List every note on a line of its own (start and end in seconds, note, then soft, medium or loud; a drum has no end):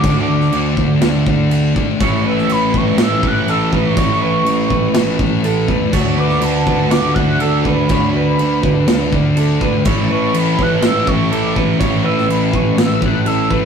0.00 0.25 D2 medium
0.00 1.99 D3 medium
0.00 0.51 D3 loud
0.00 2.00 A3 loud
0.00 2.00 D4 loud
0.00 2.01 F#4 medium
0.00 1.51 D6 loud
0.00 kick loud
0.00 crash medium
0.05 0.54 A3 loud
0.05 0.55 D4 loud
0.29 0.50 D2 loud
0.41 snare soft
0.52 0.74 D2 medium
0.52 0.99 D3 medium
0.52 1.02 A3 medium
0.52 1.04 D4 medium
0.52 crash medium
0.76 0.98 D2 medium
0.76 kick medium
1.01 1.23 D2 medium
1.01 1.50 D3 loud
1.01 1.29 A3 loud
1.01 snare loud
1.01 crash medium
1.05 1.25 D4 loud
1.26 1.48 D2 loud
1.26 1.78 A3 medium
1.26 1.73 D4 medium
1.26 kick medium
1.50 1.72 D2 medium
1.50 crash medium
1.75 1.97 G#1 medium
1.75 2.01 A3 medium
1.75 1.98 D4 medium
1.75 kick medium
1.99 2.21 A1 medium
1.99 2.49 A2 loud
1.99 2.51 E3 loud
1.99 2.52 A3 loud
1.99 5.94 C#4 loud
1.99 2.26 C#5 medium
1.99 kick loud
1.99 crash medium
2.04 5.95 E4 medium
2.25 2.46 A1 loud
2.25 2.75 B4 medium
2.25 2.53 E6 loud
2.38 snare soft
2.49 2.70 A1 medium
2.49 2.97 A2 medium
2.49 3.00 E3 medium
2.49 2.79 B5 medium
2.49 crash medium
2.53 3.02 A3 medium
2.74 2.95 A1 medium
2.74 3.23 B4 medium
2.74 3.04 C#6 medium
2.74 kick medium
2.98 3.20 A1 loud
2.98 3.48 A2 loud
2.98 3.27 E3 loud
2.98 snare loud
2.98 crash medium
3.02 3.23 A3 loud
3.02 3.29 E6 loud
3.23 3.44 A1 loud
3.23 3.73 A3 medium
3.23 kick medium
3.27 3.76 E3 medium
3.27 3.52 F#6 loud
3.47 3.69 A1 loud
3.47 3.73 A4 medium
3.47 3.75 E6 loud
3.47 crash medium
3.72 3.93 A1 medium
3.72 3.99 A3 medium
3.72 3.97 B4 medium
3.72 5.70 C#6 loud
3.72 kick medium
3.76 3.97 E3 medium
3.96 4.18 A1 medium
3.96 4.44 A2 loud
3.96 4.47 E3 loud
3.96 4.49 A3 loud
3.96 4.21 C#5 medium
3.96 kick loud
3.96 crash medium
4.21 4.42 A1 loud
4.21 4.70 B4 medium
4.44 4.66 A1 loud
4.44 4.93 A2 medium
4.44 4.96 E3 medium
4.44 crash medium
4.49 4.97 A3 medium
4.70 4.92 A1 medium
4.70 5.20 B4 medium
4.70 kick medium
4.94 5.16 A1 loud
4.94 5.44 A2 loud
4.94 5.23 E3 loud
4.94 5.19 A3 loud
4.94 snare loud
4.94 crash medium
5.19 5.41 A1 loud
5.19 5.68 A3 medium
5.19 kick medium
5.23 5.71 E3 medium
5.43 5.65 A1 loud
5.43 5.72 A4 medium
5.43 crash medium
5.68 5.90 E2 medium
5.68 5.94 E3 medium
5.68 5.95 A3 medium
5.68 5.93 B4 medium
5.68 kick medium
5.92 6.14 D2 loud
5.92 6.41 D3 loud
5.92 6.42 A3 loud
5.92 6.44 D4 loud
5.92 9.87 F#4 loud
5.92 6.18 C#5 loud
5.92 kick loud
5.92 crash medium
6.17 6.39 D2 loud
6.17 6.66 B4 medium
6.17 6.44 D6 loud
6.29 snare soft
6.41 6.63 D2 loud
6.41 6.89 D3 medium
6.41 6.92 A3 medium
6.41 6.92 D4 medium
6.41 6.92 A5 loud
6.41 crash medium
6.67 6.88 D2 medium
6.67 7.16 B4 medium
6.67 kick medium
6.90 7.12 D2 loud
6.90 7.40 D3 loud
6.90 7.20 A3 loud
6.90 7.15 D4 loud
6.90 7.16 D6 loud
6.90 snare loud
6.90 crash medium
7.14 7.38 D2 loud
7.14 7.64 D4 medium
7.14 7.41 F#6 loud
7.14 kick medium
7.20 7.68 A3 medium
7.39 7.61 D2 loud
7.39 7.69 A4 medium
7.39 7.66 E6 loud
7.39 crash medium
7.65 7.87 D2 medium
7.65 7.92 A3 medium
7.65 7.92 D4 medium
7.65 7.90 B4 medium
7.65 9.61 B5 loud
7.65 kick medium
7.89 8.11 D2 loud
7.89 8.38 D3 loud
7.89 8.41 A3 loud
7.89 8.15 C#5 loud
7.89 kick loud
7.89 crash medium
7.94 8.42 D4 loud
8.14 8.36 D2 loud
8.14 8.62 B4 medium
8.39 8.60 D2 loud
8.39 8.86 D3 medium
8.39 8.88 A3 medium
8.39 crash medium
8.43 8.89 D4 medium
8.63 8.85 D2 medium
8.63 9.13 B4 medium
8.63 kick medium
8.87 9.09 D2 medium
8.87 9.37 D3 medium
8.87 9.15 A3 loud
8.87 9.11 D4 loud
8.87 snare loud
8.87 crash medium
9.12 9.34 D2 loud
9.12 9.64 A3 medium
9.12 9.59 D4 medium
9.12 kick medium
9.37 9.58 D2 loud
9.37 9.64 A4 medium
9.37 crash medium
9.60 9.82 D2 medium
9.60 9.88 A3 medium
9.60 9.84 D4 medium
9.60 9.85 B4 medium
9.60 kick medium
9.85 10.07 A1 medium
9.85 10.34 A2 loud
9.85 10.35 E3 loud
9.85 13.65 C#4 loud
9.85 13.65 E4 loud
9.85 10.10 C#5 loud
9.85 kick loud
9.85 crash medium
9.90 10.37 A3 loud
10.11 10.32 A1 medium
10.11 10.59 B4 medium
10.11 10.38 C#6 medium
10.34 10.56 A1 medium
10.34 10.81 A2 medium
10.34 10.83 E3 medium
10.34 10.85 A3 medium
10.34 10.63 B5 loud
10.34 crash medium
10.58 10.80 A1 medium
10.58 11.08 B4 medium
10.58 10.85 F#6 loud
10.58 kick medium
10.82 11.05 A1 medium
10.82 11.32 A2 loud
10.82 11.10 E3 loud
10.82 11.06 A3 loud
10.82 11.09 E6 loud
10.82 snare loud
10.82 crash medium
11.07 11.29 A1 loud
11.07 11.60 E3 medium
11.07 11.56 A3 medium
11.07 11.33 C#6 loud
11.07 kick medium
11.31 11.53 A1 medium
11.31 11.56 A4 medium
11.31 11.56 D6 medium
11.31 crash medium
11.56 11.78 A1 medium
11.56 11.82 E3 medium
11.56 11.83 A3 medium
11.56 11.79 B4 medium
11.56 kick medium
11.80 12.02 A1 loud
11.80 12.27 A2 loud
11.80 12.30 E3 loud
11.80 12.32 A3 loud
11.80 12.04 C#5 loud
11.80 kick loud
11.80 crash medium
12.04 12.26 A1 medium
12.04 12.52 B4 medium
12.04 12.31 E6 medium
12.18 snare soft
12.28 12.50 A1 medium
12.28 12.75 A2 medium
12.28 12.77 E3 medium
12.28 12.56 B5 loud
12.28 crash medium
12.32 12.79 A3 medium
12.53 12.75 A1 medium
12.53 13.02 B4 medium
12.53 12.81 C#6 loud
12.53 kick medium
12.76 12.99 A1 medium
12.76 13.26 A2 loud
12.76 13.04 E3 loud
12.76 13.00 A3 loud
12.76 13.05 E6 loud
12.76 snare loud
12.76 crash medium
13.01 13.23 A1 loud
13.01 13.53 E3 medium
13.01 13.50 A3 medium
13.01 13.28 F#6 loud
13.01 kick medium
13.26 13.48 A1 loud
13.26 13.50 A4 medium
13.26 13.51 E6 loud
13.26 crash medium
13.50 13.65 A1 medium
13.50 13.65 E3 medium
13.50 13.65 A3 medium
13.50 13.65 B4 medium
13.50 kick medium